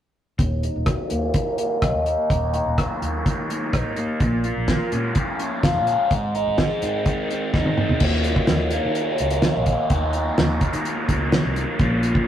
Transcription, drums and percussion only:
0.39 kick medium
0.39 closed hi-hat medium
0.63 closed hi-hat soft
0.86 kick loud
0.86 cross-stick medium
0.86 closed hi-hat medium
1.10 closed hi-hat medium
1.34 kick loud
1.34 closed hi-hat medium
1.58 closed hi-hat medium
1.82 kick loud
1.82 cross-stick loud
1.82 closed hi-hat medium
2.06 closed hi-hat soft
2.30 kick medium
2.30 closed hi-hat medium
2.54 closed hi-hat medium
2.78 kick loud
2.78 cross-stick loud
2.78 closed hi-hat medium
3.02 closed hi-hat medium
3.26 kick loud
3.26 closed hi-hat medium
3.50 closed hi-hat medium
3.73 kick loud
3.73 cross-stick loud
3.73 closed hi-hat medium
3.96 closed hi-hat medium
4.20 kick medium
4.20 closed hi-hat medium
4.44 closed hi-hat soft
4.68 kick medium
4.68 snare medium
4.68 closed hi-hat medium
4.92 closed hi-hat medium
5.15 kick medium
5.15 closed hi-hat medium
5.39 closed hi-hat medium
5.63 kick loud
5.63 snare medium
5.63 closed hi-hat medium
5.87 closed hi-hat medium
6.11 kick loud
6.11 closed hi-hat medium
6.35 closed hi-hat medium
6.58 kick loud
6.58 snare loud
6.58 closed hi-hat medium
6.82 closed hi-hat medium
7.06 kick loud
7.06 closed hi-hat medium
7.31 closed hi-hat medium
7.54 kick medium
7.54 snare soft
7.66 high tom soft
7.78 mid tom medium
7.89 floor tom medium
8.00 kick loud
8.00 crash medium
8.24 closed hi-hat medium
8.36 kick medium
8.47 snare loud
8.47 closed hi-hat medium
8.71 closed hi-hat medium
8.95 closed hi-hat medium
9.18 closed hi-hat medium
9.30 closed hi-hat medium
9.42 snare loud
9.42 closed hi-hat medium
9.66 kick medium
9.66 closed hi-hat medium
9.90 kick medium
9.90 closed hi-hat medium
10.13 closed hi-hat soft
10.38 snare loud
10.38 closed hi-hat medium
10.61 kick medium
10.61 closed hi-hat medium
10.73 closed hi-hat medium
10.85 closed hi-hat medium
11.09 kick medium
11.09 closed hi-hat medium
11.32 snare loud
11.32 closed hi-hat medium
11.56 closed hi-hat soft
11.79 kick loud
11.79 closed hi-hat medium
12.03 closed hi-hat medium
12.15 kick medium

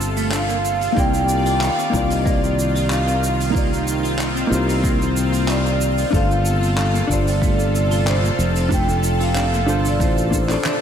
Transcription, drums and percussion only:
0.01 shaker medium
0.17 open hi-hat medium
0.17 shaker medium
0.32 clap loud
0.32 open hi-hat medium
0.32 shaker medium
0.50 shaker soft
0.65 shaker medium
0.81 open hi-hat medium
0.81 shaker medium
0.96 kick loud
0.96 open hi-hat medium
0.96 shaker medium
1.14 shaker soft
1.29 shaker medium
1.46 open hi-hat medium
1.46 shaker medium
1.61 clap loud
1.61 open hi-hat medium
1.61 shaker medium
1.79 shaker soft
1.94 kick medium
1.94 shaker medium
2.10 open hi-hat medium
2.10 shaker medium
2.26 kick loud
2.26 open hi-hat soft
2.26 shaker medium
2.44 shaker soft
2.59 shaker medium
2.75 open hi-hat medium
2.75 shaker medium
2.90 clap medium
2.90 shaker medium
3.08 shaker soft
3.24 shaker medium
3.40 open hi-hat medium
3.40 shaker medium
3.55 kick loud
3.55 open hi-hat medium
3.55 shaker medium
3.73 shaker soft
3.88 shaker medium
4.04 open hi-hat medium
4.04 shaker soft
4.19 clap medium
4.19 open hi-hat medium
4.19 shaker medium
4.37 shaker soft
4.53 shaker medium
4.69 open hi-hat medium
4.69 shaker medium
4.83 kick loud
4.83 open hi-hat medium
4.83 shaker medium
5.02 shaker soft
5.17 shaker medium
5.33 open hi-hat medium
5.33 shaker medium
5.48 clap medium
5.48 open hi-hat medium
5.48 shaker medium
5.66 shaker soft
5.81 shaker medium
5.98 open hi-hat medium
5.98 shaker soft
6.13 kick loud
6.13 open hi-hat medium
6.13 shaker medium
6.31 shaker soft
6.45 shaker medium
6.63 open hi-hat medium
6.63 shaker soft
6.77 clap loud
6.77 open hi-hat medium
6.77 shaker medium
6.95 shaker soft
7.09 kick medium
7.09 shaker medium
7.28 open hi-hat medium
7.28 shaker medium
7.42 kick loud
7.42 open hi-hat medium
7.42 shaker medium
7.59 shaker soft
7.75 shaker medium
7.91 open hi-hat medium
7.91 shaker medium
8.07 clap loud
8.07 open hi-hat medium
8.07 shaker medium
8.25 shaker soft
8.40 shaker medium
8.56 open hi-hat medium
8.56 shaker medium
8.70 kick loud
8.70 open hi-hat medium
8.70 shaker medium
8.89 shaker soft
9.03 shaker medium
9.20 open hi-hat medium
9.20 shaker soft
9.35 clap loud
9.35 open hi-hat medium
9.35 shaker medium
9.54 shaker soft
9.68 shaker medium
9.85 open hi-hat medium
9.85 shaker medium
10.00 kick loud
10.00 open hi-hat medium
10.00 shaker medium
10.18 shaker soft
10.32 kick medium
10.32 shaker medium
10.49 clap soft
10.49 open hi-hat medium
10.49 shaker medium
10.65 clap loud
10.65 open hi-hat medium
10.65 high tom medium
10.65 shaker medium

